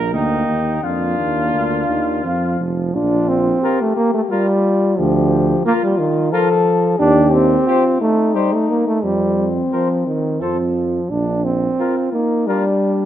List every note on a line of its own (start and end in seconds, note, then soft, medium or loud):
0.00 0.15 A#1 soft
0.00 0.51 A#3 soft
0.00 0.13 A#4 medium
0.12 0.48 D2 soft
0.12 0.78 A#3 soft
0.12 0.82 D#4 medium
0.12 0.86 G5 soft
0.48 0.82 D#2 soft
0.82 1.18 F2 soft
0.82 1.85 A#3 soft
0.82 2.25 D4 soft
0.82 2.57 F4 medium
0.82 2.25 F5 soft
1.19 1.53 D#2 soft
1.54 1.88 D2 soft
1.88 2.24 D#2 soft
1.88 2.26 D#3 soft
2.24 2.59 F2 soft
2.24 2.97 F3 medium
2.24 2.62 C4 soft
2.24 2.62 F5 soft
2.60 2.94 F1 soft
2.94 3.52 A#1 medium
2.94 3.30 D4 medium
2.94 3.59 F4 medium
3.29 3.83 C4 medium
3.62 3.80 F4 soft
3.62 4.32 G4 medium
3.62 3.80 A#4 soft
3.81 3.96 A3 medium
3.97 4.13 A#3 medium
4.14 4.22 A3 medium
4.31 5.00 G3 medium
4.31 4.98 F4 medium
4.31 4.47 F4 soft
4.31 4.47 A#4 soft
4.98 5.55 D2 medium
4.98 5.65 F3 medium
4.98 5.64 G4 medium
5.65 5.73 A#3 medium
5.65 6.31 F4 medium
5.65 5.83 F4 medium
5.65 5.82 A#4 medium
5.83 6.00 G3 medium
5.99 6.34 D#3 medium
6.32 6.99 F3 medium
6.32 6.49 F4 medium
6.32 7.01 A4 medium
6.32 6.49 A#4 medium
6.99 7.56 D#2 medium
6.99 7.35 D4 medium
6.99 7.69 G4 medium
7.33 8.01 C4 medium
7.67 8.03 F4 medium
7.67 7.83 G4 medium
7.67 7.84 C5 medium
8.01 8.36 A3 medium
8.01 9.03 D#4 medium
8.35 8.54 G3 medium
8.35 8.51 G4 medium
8.35 8.51 C5 soft
8.52 8.71 A3 medium
8.69 8.86 A#3 medium
8.87 9.05 A3 medium
9.04 9.61 F2 soft
9.04 9.48 G3 medium
9.04 10.73 C4 medium
9.73 10.05 F3 medium
9.73 9.89 A#4 soft
9.73 9.89 C5 soft
10.07 10.44 D#3 medium
10.41 10.99 F2 soft
10.41 11.12 F3 medium
10.41 10.57 A4 soft
10.41 10.58 C5 soft
11.10 11.68 A#1 soft
11.10 11.46 D4 medium
11.44 12.12 C4 medium
11.80 12.16 F4 soft
11.80 11.96 F4 soft
11.80 11.96 A#4 soft
12.12 12.49 A#3 medium
12.12 12.51 D#4 soft
12.47 13.05 G3 medium
12.47 13.05 D4 medium
12.47 12.65 F4 soft
12.47 12.64 A#4 soft